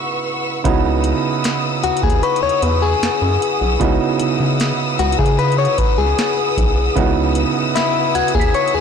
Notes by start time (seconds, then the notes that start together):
Already playing: C#3 B3 D#4 E4 F#4 B4 F#5 C#6 E6
0.64 C#2 C#3 B3 D#4 E4 F#4 B4 F#5 B5 D#6 E6, kick, closed hi-hat
1.04 closed hi-hat
1.44 snare, closed hi-hat
1.83 D#2 F#4, closed hi-hat
1.97 closed hi-hat
2.03 D#2 G#4, kick
2.10 closed hi-hat
2.23 B4 C#6, closed hi-hat
2.36 closed hi-hat
2.43 E2 C#5
2.49 closed hi-hat
2.62 E2 B4, closed hi-hat
2.82 G#4
3.02 F#2, snare, closed hi-hat
3.22 F#2
3.42 closed hi-hat
3.61 B1
3.80 C#2 C#3 B3 D#4 E4 F#4, kick, closed hi-hat
4.19 C#3, closed hi-hat
4.40 C#3
4.60 snare, closed hi-hat
4.99 C#2 F#4, closed hi-hat
5.12 closed hi-hat
5.19 C#3 G#4, kick
5.26 closed hi-hat
5.39 B4, closed hi-hat
5.52 closed hi-hat
5.58 C#5
5.65 closed hi-hat
5.78 C#2 B4, kick, closed hi-hat
5.98 C#2 G#4
6.19 snare, closed hi-hat
6.57 B1, kick, closed hi-hat
6.95 C#2 C#3 B3 D#4 E4 F#4, kick, closed hi-hat
7.35 closed hi-hat
7.75 E4, snare, closed hi-hat
8.15 D#2 F#4 G#6, closed hi-hat
8.28 closed hi-hat
8.35 D#2 G#4, kick
8.40 B6, closed hi-hat
8.54 C#5, closed hi-hat
8.68 closed hi-hat
8.74 E2 G#4